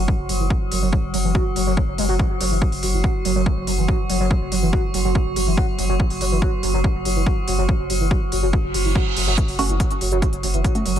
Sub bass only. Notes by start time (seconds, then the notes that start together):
0.19 F#1
0.29 F#1
0.40 F#1
0.72 F#1
0.82 F#1
1.03 F#1
1.14 F#1
1.24 F#1
1.56 F#1
1.67 F#1
1.88 F#1
1.98 F#1
2.09 F#1
2.41 F#1
2.51 F#1
2.72 F#1
2.83 F#1
2.93 F#1
3.25 F#1
3.36 F#1
3.57 F#1
3.67 F#1
3.78 F#1
4.10 F#1
4.20 F#1
4.41 F#1
4.52 F#1
4.62 F#1
4.94 F#1
5.05 F#1
5.26 F#1
5.36 F#1
5.47 F#1
5.79 F#1
5.89 F#1
6.10 F#1
6.21 F#1
6.31 F#1
6.63 F#1
6.74 F#1
6.95 F#1
7.05 F#1
7.16 F#1
7.48 F#1
7.58 F#1
7.79 F#1
7.90 F#1
8.00 F#1
8.32 F#1
8.43 F#1
8.64 F#1
8.74 F#1
8.85 F#1
9.17 F#1
9.27 F#1
9.48 F#1
9.59 F#1
9.69 F#1
10.01 F#1
10.12 F#1
10.33 F#1
10.43 F#1
10.54 F#1
10.86 F#1
10.96 F#1